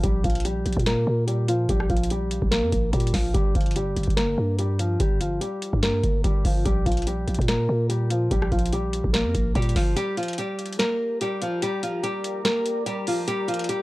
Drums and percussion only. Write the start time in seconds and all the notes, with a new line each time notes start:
0.03 kick, closed hi-hat
0.24 kick, closed hi-hat
0.30 closed hi-hat
0.35 closed hi-hat
0.40 closed hi-hat
0.45 closed hi-hat
0.66 closed hi-hat
0.73 closed hi-hat
0.77 kick, closed hi-hat
0.86 snare, closed hi-hat
1.28 closed hi-hat
1.48 closed hi-hat
1.69 kick, closed hi-hat
1.80 cross-stick
1.90 kick, closed hi-hat
1.97 closed hi-hat
2.04 closed hi-hat
2.10 closed hi-hat
2.31 closed hi-hat
2.42 kick
2.52 snare, closed hi-hat
2.72 kick, closed hi-hat
2.93 kick, closed hi-hat
3.00 closed hi-hat
3.07 closed hi-hat
3.14 kick, snare, open hi-hat
3.35 kick, closed hi-hat
3.55 kick, closed hi-hat
3.61 closed hi-hat
3.66 closed hi-hat
3.71 closed hi-hat
3.76 closed hi-hat
3.97 closed hi-hat
4.03 closed hi-hat
4.08 kick, closed hi-hat
4.17 snare, closed hi-hat
4.59 closed hi-hat
4.79 closed hi-hat
5.00 kick, closed hi-hat
5.21 closed hi-hat
5.41 closed hi-hat
5.62 closed hi-hat
5.73 kick
5.83 snare, closed hi-hat
6.04 kick, closed hi-hat
6.24 kick, closed hi-hat
6.45 kick, open hi-hat
6.66 kick, closed hi-hat
6.86 kick, closed hi-hat
6.92 closed hi-hat
6.97 closed hi-hat
7.02 closed hi-hat
7.07 closed hi-hat
7.28 closed hi-hat
7.35 closed hi-hat
7.39 kick, closed hi-hat
7.48 snare, closed hi-hat
7.90 closed hi-hat
8.10 closed hi-hat
8.31 kick, closed hi-hat
8.42 cross-stick
8.52 kick, closed hi-hat
8.59 closed hi-hat
8.66 closed hi-hat
8.73 closed hi-hat
8.93 closed hi-hat
9.04 kick
9.14 snare, closed hi-hat
9.35 kick, closed hi-hat
9.55 kick, closed hi-hat
9.62 closed hi-hat
9.69 closed hi-hat
9.76 kick, snare, open hi-hat
9.97 closed hi-hat
10.17 closed hi-hat
10.23 closed hi-hat
10.28 closed hi-hat
10.33 closed hi-hat
10.38 closed hi-hat
10.59 closed hi-hat
10.66 closed hi-hat
10.73 closed hi-hat
10.79 snare, closed hi-hat
11.21 closed hi-hat
11.41 closed hi-hat
11.62 closed hi-hat
11.83 closed hi-hat
12.04 closed hi-hat
12.24 closed hi-hat
12.45 snare, closed hi-hat
12.66 closed hi-hat
12.86 closed hi-hat
13.07 open hi-hat
13.28 closed hi-hat
13.48 closed hi-hat
13.54 closed hi-hat
13.59 closed hi-hat
13.64 closed hi-hat
13.69 closed hi-hat